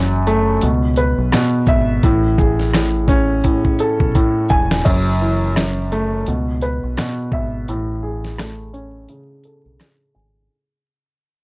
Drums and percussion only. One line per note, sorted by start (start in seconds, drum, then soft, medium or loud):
0.27 closed hi-hat medium
0.27 shaker medium
0.61 closed hi-hat loud
0.96 closed hi-hat medium
0.96 shaker medium
1.32 cross-stick medium
1.32 snare loud
1.32 closed hi-hat medium
1.66 kick loud
1.66 shaker medium
2.03 kick loud
2.03 closed hi-hat medium
2.38 kick loud
2.38 shaker medium
2.59 snare soft
2.74 cross-stick loud
2.74 snare loud
2.74 closed hi-hat medium
3.08 kick loud
3.08 closed hi-hat medium
3.08 shaker medium
3.44 kick medium
3.44 closed hi-hat medium
3.65 kick medium
3.79 closed hi-hat medium
3.79 shaker medium
4.00 kick medium
4.15 kick medium
4.15 closed hi-hat medium
4.49 kick loud
4.49 shaker medium
4.71 snare loud
4.86 kick loud
4.86 closed hi-hat medium
4.86 crash medium
5.56 cross-stick medium
5.56 snare loud
5.56 closed hi-hat medium
5.92 closed hi-hat medium
6.26 closed hi-hat medium
6.61 closed hi-hat medium
6.97 cross-stick medium
6.97 snare loud
6.97 closed hi-hat medium
7.32 kick medium
7.68 closed hi-hat medium
8.24 snare soft
8.38 cross-stick medium
8.38 snare loud
8.38 closed hi-hat medium
8.74 closed hi-hat soft
9.08 closed hi-hat medium
9.44 closed hi-hat medium
9.79 cross-stick medium
9.79 snare loud
9.79 closed hi-hat medium